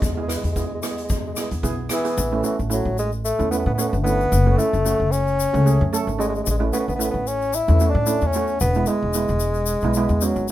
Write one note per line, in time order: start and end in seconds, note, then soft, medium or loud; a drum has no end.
0.02 0.37 E2 medium
0.02 0.13 G#3 medium
0.02 kick loud
0.02 closed hi-hat medium
0.02 shaker medium
0.15 0.21 G#3 medium
0.15 0.24 B3 medium
0.15 0.24 E4 medium
0.15 0.25 G#4 medium
0.22 0.28 G#3 medium
0.28 0.36 G#3 medium
0.28 0.46 B3 medium
0.28 0.46 E4 medium
0.28 0.46 B4 medium
0.28 cross-stick medium
0.28 closed hi-hat medium
0.28 shaker medium
0.37 0.44 G#3 medium
0.44 1.34 E2 medium
0.44 0.51 G#3 soft
0.44 closed hi-hat medium
0.44 shaker soft
0.52 0.58 G#3 medium
0.52 0.73 B3 medium
0.52 0.73 E4 medium
0.52 0.73 G#4 medium
0.52 kick medium
0.52 closed hi-hat medium
0.52 shaker medium
0.59 0.66 G#3 medium
0.67 0.73 G#3 medium
0.74 0.81 G#3 medium
0.82 0.89 G#3 medium
0.82 1.16 B3 medium
0.82 1.16 E4 medium
0.82 1.16 G#4 medium
0.82 cross-stick medium
0.82 closed hi-hat medium
0.82 shaker medium
0.90 0.97 G#3 medium
0.97 1.03 G#3 medium
0.97 closed hi-hat medium
0.97 shaker soft
1.04 1.11 G#3 medium
1.09 1.19 G#3 medium
1.09 kick loud
1.09 closed hi-hat medium
1.09 shaker medium
1.20 1.26 G#3 medium
1.27 1.33 G#3 medium
1.34 1.41 G#3 medium
1.34 1.54 B3 medium
1.34 1.54 E4 medium
1.34 1.54 G#4 medium
1.34 cross-stick medium
1.34 closed hi-hat medium
1.34 shaker medium
1.41 1.49 G#3 medium
1.51 1.62 E2 medium
1.51 closed hi-hat medium
1.51 shaker soft
1.63 1.86 B1 medium
1.63 1.80 B3 medium
1.63 1.80 E4 medium
1.63 1.81 G#4 medium
1.63 kick medium
1.63 closed hi-hat medium
1.63 shaker medium
1.89 2.42 E3 medium
1.89 1.99 B3 medium
1.89 1.99 E4 medium
1.89 2.00 G#4 medium
1.89 cross-stick medium
1.89 closed hi-hat medium
1.89 shaker medium
2.04 2.17 B3 medium
2.04 2.17 E4 medium
2.04 2.17 G#4 medium
2.04 closed hi-hat medium
2.04 shaker soft
2.18 2.40 A1 loud
2.18 shaker medium
2.32 2.39 A3 medium
2.32 2.40 C#4 medium
2.32 2.40 E4 medium
2.43 2.57 E3 medium
2.43 2.61 A3 medium
2.43 2.61 C#4 medium
2.43 2.61 F#4 medium
2.43 shaker medium
2.59 2.82 A1 medium
2.59 shaker soft
2.70 2.97 F#3 medium
2.70 3.12 A3 medium
2.70 3.12 C#4 medium
2.70 3.12 E4 medium
2.70 shaker medium
2.85 3.31 A1 medium
2.98 3.11 G#3 medium
2.98 shaker medium
3.12 shaker soft
3.25 3.50 A3 loud
3.25 shaker medium
3.39 3.62 E2 loud
3.39 3.47 A3 medium
3.39 3.47 C#4 medium
3.39 3.47 E4 medium
3.39 shaker soft
3.51 3.69 A3 medium
3.51 3.58 B3 medium
3.51 3.69 C#4 medium
3.51 3.69 E4 medium
3.51 shaker medium
3.59 3.66 B3 medium
3.66 3.89 A2 medium
3.66 3.73 B3 medium
3.75 3.95 A3 medium
3.75 3.80 B3 medium
3.75 3.95 C#4 medium
3.79 3.88 B3 medium
3.79 3.96 F#4 medium
3.79 shaker medium
3.89 4.26 G1 medium
3.89 3.96 B3 medium
3.93 shaker soft
4.04 4.29 A3 medium
4.04 4.59 B3 loud
4.04 4.29 C#4 medium
4.04 4.29 E4 medium
4.04 shaker medium
4.21 shaker soft
4.32 4.55 F#1 loud
4.32 shaker medium
4.46 4.54 A3 medium
4.46 4.54 C#4 medium
4.46 4.54 F#4 medium
4.58 5.13 A3 loud
4.58 4.76 A3 medium
4.58 4.75 C#4 medium
4.58 4.76 E4 medium
4.58 shaker medium
4.73 4.96 F#1 medium
4.73 shaker soft
4.85 5.27 A3 medium
4.85 5.27 C#4 medium
4.85 5.27 F#4 medium
4.85 shaker medium
5.00 5.45 F#1 medium
5.12 5.92 C#4 loud
5.12 shaker medium
5.27 shaker soft
5.40 shaker medium
5.53 5.77 C#2 loud
5.53 5.61 A3 medium
5.53 5.61 C#4 medium
5.53 5.61 F#4 medium
5.53 shaker soft
5.66 5.83 A3 medium
5.66 5.83 C#4 medium
5.66 5.83 G#4 medium
5.66 shaker medium
5.81 6.03 F#2 medium
5.93 6.10 A3 loud
5.93 6.10 C#4 medium
5.93 6.10 A4 loud
5.93 shaker medium
6.07 6.40 G#1 medium
6.07 shaker soft
6.19 6.27 G#3 loud
6.19 6.43 A3 medium
6.19 6.44 C#4 medium
6.19 6.44 F#4 medium
6.19 shaker medium
6.29 6.36 G#3 medium
6.35 6.42 G#3 medium
6.35 shaker soft
6.44 6.69 A1 loud
6.44 6.50 G#3 medium
6.44 shaker loud
6.51 6.57 G#3 medium
6.58 6.65 G#3 medium
6.58 6.68 A3 medium
6.58 6.68 C#4 medium
6.58 6.68 E4 medium
6.73 6.90 A3 medium
6.73 6.80 B3 medium
6.73 6.90 C#4 medium
6.73 6.90 F#4 medium
6.73 shaker medium
6.80 6.88 B3 medium
6.88 7.11 A1 medium
6.88 6.95 B3 medium
6.88 shaker soft
6.95 7.41 A3 medium
6.95 7.03 B3 medium
6.95 7.41 E4 medium
7.00 7.41 C#4 medium
7.00 shaker loud
7.04 7.10 B3 medium
7.11 7.59 A1 medium
7.11 7.29 B3 medium
7.27 7.56 C#4 loud
7.27 shaker medium
7.42 shaker soft
7.53 7.91 E4 loud
7.53 shaker medium
7.68 7.91 E2 loud
7.68 7.75 A3 medium
7.68 7.76 C#4 medium
7.68 7.76 E4 medium
7.68 shaker soft
7.80 7.97 A3 medium
7.80 7.98 C#4 medium
7.80 7.98 F#4 medium
7.80 shaker medium
7.90 8.28 D4 loud
7.95 8.17 A2 loud
8.06 8.24 A3 medium
8.06 8.24 C#4 medium
8.06 8.24 E4 medium
8.06 shaker loud
8.21 8.55 E2 medium
8.21 shaker soft
8.26 8.60 C#4 loud
8.33 8.59 A3 medium
8.33 8.59 C#4 medium
8.33 8.59 F#4 medium
8.33 shaker medium
8.47 shaker soft
8.60 8.83 E1 loud
8.60 8.89 B3 loud
8.60 shaker medium
8.74 8.83 G#3 medium
8.74 8.83 B3 medium
8.74 8.83 E4 medium
8.74 shaker soft
8.86 10.25 G#3 loud
8.86 9.04 G#3 medium
8.86 9.04 B3 medium
8.86 9.05 E4 medium
8.86 shaker medium
9.02 9.25 E1 medium
9.14 9.56 G#3 medium
9.14 9.56 B3 medium
9.14 9.56 E4 medium
9.14 shaker loud
9.28 9.74 E1 medium
9.28 shaker soft
9.40 shaker medium
9.54 shaker soft
9.66 shaker loud
9.81 10.05 B1 medium
9.81 9.90 G#3 medium
9.81 9.91 B3 medium
9.81 9.91 E4 medium
9.81 shaker soft
9.94 10.12 G#3 medium
9.94 10.13 B3 medium
9.94 10.13 E4 loud
9.94 shaker medium
10.09 10.32 E2 medium
10.09 shaker soft
10.21 10.49 F#3 medium
10.21 10.39 G#3 medium
10.21 10.38 B3 medium
10.21 10.38 C#4 medium
10.21 shaker loud
10.36 10.52 G#1 medium
10.36 shaker soft
10.48 shaker medium